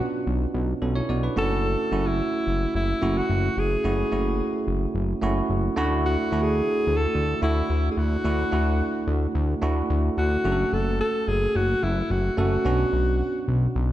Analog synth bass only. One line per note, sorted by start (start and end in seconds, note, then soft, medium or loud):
0.27 0.46 B1 medium
0.54 0.74 B1 loud
0.82 1.02 B1 medium
1.09 1.29 B1 medium
1.37 1.76 F#1 medium
1.92 2.22 F#1 medium
2.47 2.67 F#1 medium
2.74 2.94 F#1 medium
3.02 3.22 F#1 loud
3.30 3.49 F#1 loud
3.57 3.77 F#1 medium
3.84 4.04 F#1 medium
4.12 4.42 F#1 medium
4.67 4.87 F#1 loud
4.95 5.14 F#1 loud
5.22 5.42 F#1 loud
5.50 5.69 F#1 loud
5.77 6.17 D2 medium
6.32 6.62 D2 medium
6.87 7.07 D2 medium
7.15 7.35 D2 medium
7.42 7.62 D2 loud
7.70 7.90 D2 loud
7.97 8.17 D2 medium
8.25 8.44 D2 loud
8.52 8.82 D2 medium
9.07 9.27 D2 medium
9.35 9.55 D2 medium
9.62 9.82 D2 medium
9.90 10.10 D2 loud
10.18 10.37 D2 loud
10.45 10.65 F#1 loud
10.73 11.02 F#1 medium
11.28 11.47 F#1 loud
11.55 11.75 F#1 medium
11.83 12.03 F#1 loud
12.10 12.30 F#1 loud
12.38 12.58 F#1 medium
12.65 12.85 B1 loud
12.93 13.22 B1 medium
13.48 13.68 B1 medium
13.75 13.92 B1 loud